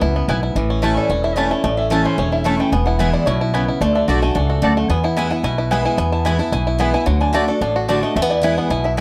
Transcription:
Already playing: E3 B3
0.01 C#2 F#2 E4
0.16 B3
0.28 B1 G#2 B3 E4 B4 G#5
0.43 E4
0.55 A1 A2 E3
0.70 C#4
0.82 E3 A3 C#4 E4 C#5 A5
0.97 A4 D5
1.09 E1 E2 C#4
1.24 E4 E5
1.36 E3 A3 C#4 E4 C#5 D5 A5
1.51 A3 C#4 E4
1.64 A1 A2 A3 D5
1.77 C#4 E5
1.90 E3 A3 C#4 E4 C#5 A5
2.05 A3 C5
2.18 E1 E2 C#4 C#5
2.32 E4 E5
2.44 E3 A3 C#4 E4 A4 C#5 A5
2.57 A3 C#4 E4 G5
2.72 E1 E2 B3 G#5
2.85 E4 F#5
2.99 E3 G#3 B3 E4 B4 E5 G#5
3.13 E4 D5
3.26 B1 B2 E4 C#5
3.41 E4
3.54 C#3 B3 E4 B4 G#5
3.68 E4
3.81 D2 D3 A3 D5
3.95 D4 E5
4.08 B1 D3 A3 D4 F#4 D5 F#5 A5
4.22 A3 D4 F#4 G#5
4.35 C#2 G#2 D4 F#5
4.49 F#4 A4
4.62 D2 F#2 A3 F#4 A4 D5 A5
4.77 A3 F#5
4.89 E2 B3 G#5
5.04 E4 F#5
5.16 E3 G#3 B3 E4 B4 G#5
5.30 B3 E4 F#5
5.43 B1 B2 E4 G#5
5.58 E4 B4
5.71 E3 G#3 B3 E4 B4 E5 G#5
5.85 E4 G#5
5.97 E2 B3 G#5
6.12 E4 A5
6.25 E3 G#3 B3 E4 B4 G#5 B5
6.39 B3 E4 A5
6.52 B1 B2 E4 G#5
6.67 E4 B4
6.79 E3 G#3 B3 E4 B4 E5 G#5
6.94 B3 E4 G#5
7.06 D2 D3 F#3 F#5
7.21 D4 G#5
7.33 D3 A3 D4 F#4 D5 E5 A5
7.48 D4 F#4 A4 D5
7.61 A1 A2 D4
7.76 F#4
7.88 D3 A3 D4 F#4 D5 A5
8.02 A3 D4 F#4 D#5
8.16 E2 A3 E5
8.22 B3
8.30 E4 D5
8.42 E3 G#3 B3 E4 B4 E5 G#5
8.58 B3 F#5
8.70 B1 B2 E4 G#5
8.84 E4 E5
8.97 E3 B3

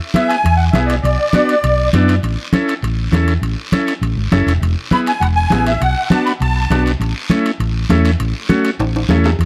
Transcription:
0.14 B3 E4 G#4 E5, high conga, high timbale, short guiro
0.29 G#5, high timbale, short guiro
0.44 E2, high conga, high timbale, long guiro
0.57 F#5
0.72 B1 B3 E4 G#4 E5, high conga, high timbale, low timbale, short guiro
0.86 D5, high timbale, short guiro
1.02 B1 D5, high conga, high timbale, long guiro
1.33 B3 D4 F#4, high conga, high timbale, short guiro
1.49 high timbale, short guiro
1.64 B1, high conga, high timbale, long guiro
1.93 F#2 B3 D4 E4, high conga, high timbale, short guiro
2.08 high timbale, short guiro
2.23 A1, high conga, high timbale, long guiro
2.53 C#4 E4 A4, high conga, high timbale, short guiro
2.68 high timbale, short guiro
2.82 A1, high conga, high timbale, long guiro
3.12 E2 C#4 E4 A4, high conga, high timbale, low timbale, short guiro
3.28 high timbale, short guiro
3.42 A1, high conga, high timbale, long guiro
3.72 C#4 E4 A4, high conga, high timbale, short guiro
3.87 high timbale, short guiro
4.01 A1, high conga, high timbale, long guiro
4.16 G#1
4.31 F#1 C#4 E4 A4, high conga, high timbale, low timbale, short guiro
4.46 E1, high timbale, short guiro
4.61 E1, high conga, high timbale, long guiro
4.91 B3 E4 G#4 B5, high conga, high timbale, short guiro
5.06 G#5, high timbale, short guiro
5.20 E1 F#5, high conga, high timbale, long guiro
5.36 G#5
5.50 A1 B3 E4 G#4, high conga, high timbale, low timbale, short guiro
5.67 E5, high timbale, short guiro
5.81 B1 F#5, high conga, high timbale, long guiro
6.10 B3 D4 F#4 A5, high conga, high timbale, short guiro
6.26 B5, high timbale, short guiro
6.40 B1 A5, high conga, high timbale, long guiro
6.70 B1 B3 D4 F#4, high conga, high timbale, low timbale, short guiro
6.86 high timbale, short guiro
7.00 A1, high conga, high timbale, long guiro
7.30 A3 C#4 E4, high conga, high timbale, short guiro
7.46 high timbale, short guiro
7.60 A1, high conga, high timbale, long guiro
7.89 E2 A3 C#4 E4, high conga, high timbale, low timbale, short guiro
8.05 high timbale, short guiro
8.20 A1, high conga, high timbale, long guiro
8.49 A3 C#4 F#4, high conga, high timbale, short guiro
8.65 high timbale, short guiro
8.79 A1, high conga, high timbale, long guiro
8.96 high timbale
9.09 E2 A3 C#4 E4, high conga, low timbale, short guiro
9.24 low timbale, short guiro
9.39 E2, high conga, high timbale, long guiro

